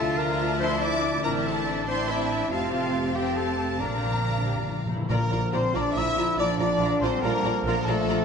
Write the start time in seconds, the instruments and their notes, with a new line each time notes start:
Already playing: double bass section D2, viola section F3 D4, cello section F4, clarinet A4, harp E5, violin section E5 A5
0.00 harp D3
0.18 harp D4, clarinet A#4, violin section A#5
0.40 harp E4
0.60 harp F3, cello section E4, clarinet C5, violin section C6
0.81 clarinet D5, harp E5, violin section D6
1.04 harp D5
1.23 double bass section A1, harp A2, viola section C4 E4, cello section D4, clarinet A#4, violin section E5 A#5
1.28 violin section A5
1.45 harp E3, clarinet A4, violin section A5
1.67 harp E4
1.87 viola section C4 E4, harp A4, clarinet C5, violin section E5 A5 C6
2.09 clarinet E4, violin section E5, harp E5
2.32 harp C5
2.50 double bass section F1, harp F2, viola section C4 G4, cello section C4, clarinet F4, violin section F5 A5
2.73 harp C3, clarinet F4, violin section F5
2.96 harp G4
3.15 viola section C4 G4, clarinet G4, harp A4, violin section F5 G5 A5
3.37 clarinet A4, harp G5, violin section A5
3.60 harp C5
3.80 double bass section A#1, timpani A#2, harp A#2, viola section C4 D4, cello section D4, clarinet A#4, violin section F5 A#5
3.89 timpani A#2
3.98 timpani A#2
4.04 timpani A#2, harp D3
4.13 timpani A#2
4.21 timpani A#2, harp C4
4.29 timpani A#2
4.36 timpani A#2
4.43 timpani A#2, viola section G4, harp D5
4.50 timpani A#2
4.56 timpani A#2
4.65 timpani A#2, viola section F4
4.71 timpani A#2
4.78 timpani A#2
4.86 timpani A#2, viola section E4, harp C5
4.95 timpani A#2
5.02 timpani A#2
5.09 double bass section A#1, timpani A#2, harp A#2, trombone section D3 F3, french horn section A#3, viola section F4, clarinet A#4, violin section A#4 D5 A#5, flute A#5
5.31 double bass section A#1, harp D4, viola section F4, violin section D5 A#5
5.52 double bass section A#1, french horn section C4, viola section F4, violin section C5 D5 A#5, clarinet C5, harp D5, flute C6
5.73 double bass section A#1, french horn section D4, viola section F4, clarinet D5, violin section D5 A#5, flute D6
5.77 violin section D5
5.95 double bass section A#1, french horn section E4, viola section F4, violin section D5 E5 A#5, harp D5, clarinet E5, flute E6
6.15 double bass section A#1, harp D4, viola section F4, violin section D5 A#5
6.36 double bass section A#1, cello section F3, viola section F4, violin section D5 A#5, clarinet D5, flute D6
6.40 french horn section D4
6.58 double bass section A#1, harp D4, viola section F4, violin section D5 A#5, clarinet D5, flute D6
6.62 french horn section D4
6.78 double bass section A#1, viola section F4
6.84 violin section D5 A#5
7.00 double bass section A#1, cello section G3, harp D4, viola section F4, clarinet C5, violin section C5 D5 A#5, flute C6
7.05 french horn section C4
7.22 double bass section A#1, french horn section A#3, viola section F4, clarinet A#4, violin section A#4 D5 A#5, harp D5, flute A#5
7.43 double bass section A#1, harp D4, viola section F4, violin section D5 A#5
7.63 double bass section A#1, harp A#2, cello section F3, viola section F4, clarinet A#4, violin section A#4, flute A#5
7.67 french horn section A#3, violin section D5 A#5
7.85 double bass section A#1, viola section F4, violin section A4 D5 A#5, clarinet A4, flute A5
7.89 french horn section A3
8.06 double bass section A#1, viola section F4, harp D5, violin section D5 A#5